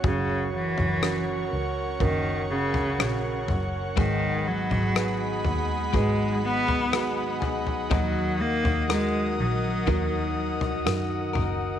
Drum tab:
SD |----r-------r---|----r-------r---|----r-------r---|
FT |o--o----o--o--o-|o--o--o-o--o--oo|o--o----o--o--o-|
BD |o-------o-------|o-------o-------|o-------o-------|